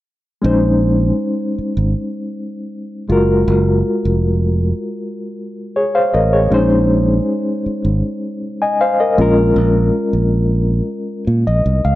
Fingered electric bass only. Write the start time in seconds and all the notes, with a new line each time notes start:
0.44 A#1
1.58 muted fingered electric bass stroke
1.77 G#1
3.10 F#1
3.48 F#1
4.05 F1
6.14 A1
6.52 A#1
7.66 muted fingered electric bass stroke
7.85 G#1
9.18 A#1
9.56 A#1
10.13 A#1
11.27 A#2
11.47 A#1
11.66 C2
11.85 C#2